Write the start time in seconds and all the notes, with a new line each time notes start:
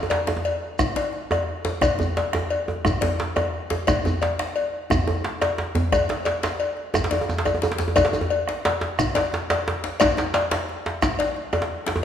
0.03 djembe tone
0.10 cowbell, djembe slap
0.27 bombo rim, djembe slap, djembe tone
0.37 djembe tone
0.44 cowbell, djembe slap
0.79 bombo rim, bombo low, djembe bass, shekere
0.96 cowbell, djembe slap, djembe tone
1.13 djembe slap
1.31 bombo rim, cowbell, djembe tone
1.65 djembe slap, djembe tone
1.81 bombo rim, bombo low, cowbell, djembe tone, djembe bass, shekere
1.99 djembe tone, djembe bass, shekere
2.17 cowbell, djembe slap
2.33 bombo rim, djembe slap, djembe tone
2.50 cowbell, djembe slap
2.68 djembe tone
2.85 bombo rim, bombo low, djembe tone, djembe bass, shekere
3.01 cowbell, djembe slap, djembe tone, djembe bass
3.20 djembe slap
3.36 bombo rim, cowbell, djembe tone
3.70 djembe slap, djembe tone
3.87 bombo rim, bombo low, cowbell, djembe tone, djembe bass, shekere
4.05 djembe tone, djembe bass, shekere
4.22 cowbell, djembe slap
4.39 bombo rim, djembe slap
4.56 cowbell, djembe slap
4.90 bombo rim, bombo low, djembe bass, shekere
5.07 djembe tone
5.24 djembe slap
5.41 bombo rim, cowbell, djembe slap
5.58 djembe slap
5.75 djembe slap, djembe bass
5.92 bombo rim, bombo low, cowbell, djembe slap, djembe tone, djembe bass, shekere
6.09 djembe slap, djembe tone
6.25 cowbell, djembe slap
6.43 bombo rim, djembe slap, shekere
6.60 cowbell, djembe slap
6.77 djembe slap
6.94 bombo rim, bombo low, djembe slap, djembe tone, djembe bass, shekere
7.04 djembe slap
7.11 cowbell, djembe slap, djembe tone
7.13 djembe tone
7.21 djembe tone
7.29 djembe tone, shekere
7.38 djembe slap
7.45 bombo rim, cowbell, djembe tone, djembe bass, shekere
7.54 djembe tone
7.62 djembe slap, djembe tone, shekere
7.72 djembe slap
7.78 djembe slap, djembe tone, shekere
7.88 djembe tone
7.96 bombo rim, bombo low, cowbell, djembe tone, djembe bass, shekere
8.05 djembe slap
8.13 djembe tone, shekere
8.21 djembe tone
8.30 cowbell, djembe slap
8.48 bombo rim, djembe slap
8.65 cowbell, djembe slap
8.81 djembe slap
8.99 bombo rim, bombo low, djembe bass, shekere
9.15 cowbell, djembe slap, djembe tone
9.33 djembe slap
9.50 bombo rim, cowbell, djembe slap
9.68 djembe slap
9.84 djembe slap
10.00 bombo rim, bombo low, cowbell, djembe slap, djembe bass, shekere
10.17 djembe slap, djembe tone, shekere
10.34 cowbell, djembe slap
10.51 bombo rim, djembe slap
10.69 djembe slap
10.86 djembe slap
11.02 bombo rim, bombo low, djembe slap, djembe bass, shekere
11.19 cowbell, djembe slap, djembe tone
11.36 djembe slap
11.53 bombo rim, cowbell, djembe tone
11.62 djembe slap
11.86 djembe slap
11.96 djembe tone